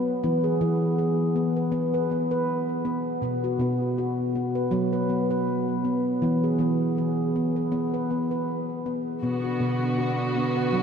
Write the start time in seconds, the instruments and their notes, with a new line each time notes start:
Already playing: handpan B3
0.23 handpan E3 B3
0.44 handpan G#4
0.61 handpan E3 B3
0.98 handpan G#4
1.36 handpan B3
1.56 handpan B4
1.72 handpan B3
1.94 handpan B4
2.11 handpan B3
2.31 handpan B4
2.85 handpan B3
3.22 handpan B2 B3
3.44 handpan F#4
3.59 handpan B2 B3
3.98 handpan F#4
4.35 handpan B3
4.55 handpan B4
4.71 handpan F#3 B3
4.93 handpan B4
5.10 handpan B3
5.31 handpan B4
5.85 handpan B3
6.22 handpan E3 B3
6.44 handpan G#4
6.59 handpan E3 B3
6.98 handpan G#4
7.36 handpan B3
7.56 handpan B4
7.72 handpan B3
7.94 handpan B4
8.11 handpan B3
8.31 handpan B4
8.86 handpan B3
9.22 handpan B2 B3, string section D3 B3 F#4
9.44 handpan F#4
9.60 handpan B2 B3
9.98 handpan F#4
10.36 handpan B3
10.57 handpan B4
10.73 handpan F#3 B3